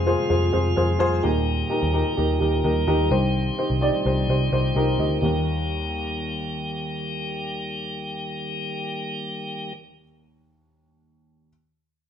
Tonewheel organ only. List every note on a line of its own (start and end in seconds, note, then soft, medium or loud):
0.00 1.22 C3 medium
0.00 1.22 F3 soft
0.00 1.22 G#3 medium
0.00 1.22 F4 medium
1.23 3.09 D#3 medium
1.23 5.18 G3 soft
1.23 3.09 A#3 soft
1.23 5.18 G4 medium
3.11 5.20 D#3 medium
3.11 5.20 C4 soft
5.21 9.73 D#3 medium
5.21 9.73 G3 soft
5.21 9.73 A#3 soft
5.21 9.73 G4 medium